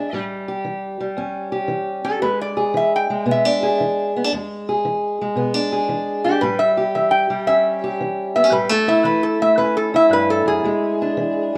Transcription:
0.00 0.23 E5 medium
0.13 0.60 A2 medium
0.13 0.99 G3 medium
0.48 1.51 G4 medium
0.65 1.13 E3 medium
1.00 2.21 G3 medium
1.17 1.65 E2 medium
1.17 2.03 C#4 medium
1.52 2.19 G4 medium
1.68 2.17 E3 medium
2.04 2.19 C#4 medium
2.04 2.21 A4 medium
2.22 2.70 E2 medium
2.22 3.10 G#3 medium
2.22 2.38 B4 medium
2.41 2.74 D5 medium
2.57 3.62 G#4 medium
2.74 3.23 E3 medium
2.74 2.92 E5 medium
2.96 3.27 G5 medium
3.10 4.29 G#3 medium
3.26 3.75 B2 medium
3.26 3.45 B3 medium
3.31 3.79 E5 medium
3.45 4.15 D4 soft
3.63 4.30 G#4 medium
3.80 4.28 E3 medium
4.16 4.24 B3 medium
4.24 4.32 D4 soft
4.33 4.81 E2 medium
4.33 5.20 G#3 medium
4.69 5.71 G#4 medium
4.85 5.33 E3 medium
5.21 6.41 G#3 medium
5.35 5.85 B2 medium
5.35 5.54 B3 medium
5.54 6.24 D4 soft
5.72 6.40 G#4 medium
5.89 6.38 E3 medium
6.24 6.40 D4 medium
6.24 6.41 G4 medium
6.41 6.91 A2 medium
6.41 7.30 G3 medium
6.41 6.58 B4 medium
6.59 6.93 E5 medium
6.77 7.83 G4 medium
6.95 7.44 E3 medium
6.95 7.10 E5 medium
7.11 7.45 G5 medium
7.30 8.50 G3 medium
7.47 7.96 E2 medium
7.47 8.36 C#4 medium
7.47 7.98 E5 medium
7.84 8.51 G4 medium
8.01 8.49 E3 medium
8.36 8.44 B3 medium
8.36 8.52 E5 medium
8.44 8.52 C#4 soft
8.51 9.01 A2 medium
8.51 8.69 G3 medium
8.51 8.69 B4 medium
8.69 9.40 A3 soft
8.69 8.88 A4 medium
8.88 9.94 E4 medium
8.88 9.05 E5 medium
9.04 9.54 E3 medium
9.04 9.22 B4 medium
9.23 9.40 A4 medium
9.42 10.62 A3 soft
9.42 9.58 E5 medium
9.57 10.07 E2 medium
9.57 10.62 C#4 medium
9.57 9.75 B4 medium
9.77 9.93 A4 medium
9.94 11.58 E4 medium
9.94 10.11 E5 medium
10.09 10.45 G2 medium
10.09 10.29 B4 medium
10.30 10.46 A4 medium
10.46 10.63 F#2 medium
10.46 11.58 G#4 medium
10.64 11.13 E2 medium
10.64 11.55 G#3 medium
11.02 11.58 D4 medium
11.17 11.58 E3 medium

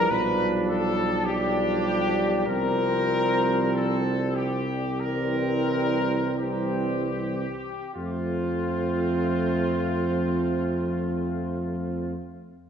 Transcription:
0.00 0.12 E3 medium
0.00 0.10 A#4 medium
0.10 2.43 B1 medium
0.10 1.24 F3 medium
0.10 1.23 G3 medium
0.10 1.23 D4 medium
0.10 0.50 B4 medium
0.67 1.24 A4 medium
1.25 2.44 F3 medium
1.25 2.45 G3 medium
1.25 2.45 D4 medium
1.25 2.47 G4 medium
2.47 7.44 C2 medium
2.47 4.62 F3 medium
2.47 4.84 G3 medium
2.47 4.61 C4 medium
2.47 3.70 A#4 medium
3.74 4.35 A4 medium
4.35 5.00 G4 medium
5.00 6.35 E3 medium
5.00 6.36 G3 medium
5.00 6.35 C4 medium
5.00 6.39 A#4 medium
6.38 7.46 E3 soft
6.38 7.46 G3 soft
6.38 7.45 C4 soft
6.38 7.92 G4 medium
7.95 12.14 F2 medium
7.95 12.14 F3 soft
7.95 12.14 A3 soft
7.95 12.14 C4 soft
7.95 12.13 F4 medium

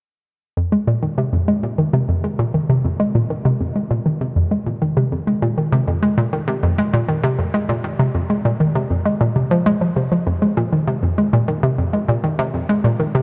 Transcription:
0.57 0.66 F2 medium
0.72 0.82 G#3 medium
0.87 0.93 A#2 medium
1.03 1.12 D#3 medium
1.18 1.27 C3 medium
1.33 1.42 F2 medium
1.48 1.57 G#3 medium
1.63 1.69 A#2 medium
1.78 1.88 D#3 medium
1.93 2.03 C3 loud
2.09 2.18 F2 medium
2.24 2.33 G#3 medium
2.39 2.45 A#2 medium
2.54 2.63 D#3 medium
2.70 2.79 C3 medium
2.85 2.94 F2 medium
3.00 3.09 G#3 medium
3.15 3.20 A#2 medium
3.30 3.39 D#3 medium
3.45 3.54 C3 loud
3.60 3.70 F2 medium
3.76 3.85 G#3 medium
3.91 3.96 A#2 medium
4.06 4.15 D#3 medium
4.21 4.30 C3 medium
4.36 4.45 F2 medium
4.51 4.61 G#3 medium
4.67 4.72 A#2 medium
4.82 4.91 D#3 medium
4.97 5.06 C3 medium
5.12 5.21 F2 medium
5.27 5.36 G#3 medium
5.42 5.48 A#2 medium
5.58 5.67 D#3 medium
5.72 5.82 C3 medium
5.88 5.97 F2 medium
6.03 6.12 G#3 medium
6.18 6.23 A#2 medium
6.33 6.42 D#3 medium
6.48 6.57 C3 medium
6.63 6.72 F2 medium
6.78 6.88 G#3 medium
6.94 6.99 A#2 medium
7.09 7.18 D#3 medium
7.24 7.33 C3 loud
7.39 7.48 F2 medium
7.54 7.63 G#3 medium
7.69 7.75 A#2 medium
7.84 7.94 D#3 medium
7.99 8.09 C3 medium
8.15 8.24 F2 medium
8.30 8.39 G#3 medium
8.45 8.51 A#2 medium
8.60 8.70 D#3 medium
8.75 8.85 C3 medium
8.90 9.00 F2 medium
9.06 9.15 G#3 medium
9.21 9.26 A#2 loud
9.36 9.45 C3 medium
9.51 9.60 F3 loud
9.66 9.80 G#3 loud
9.81 9.91 F3 medium
9.96 10.10 C3 medium
10.12 10.26 F3 medium
10.27 10.36 F2 medium
10.42 10.51 G#3 medium
10.57 10.63 A#2 loud
10.73 10.82 D#3 medium
10.88 10.97 C3 medium
11.03 11.12 F2 medium
11.18 11.27 G#3 medium
11.33 11.39 A#2 loud
11.48 11.57 D#3 medium
11.63 11.73 C3 loud
11.78 11.88 F2 medium
11.93 12.03 G#3 medium
12.09 12.14 A#2 medium
12.24 12.33 D#3 medium
12.39 12.48 C3 loud
12.54 12.63 F2 medium
12.69 12.79 G#3 medium
12.84 12.90 A#2 loud
13.00 13.09 D#3 medium
13.15 13.22 C3 loud

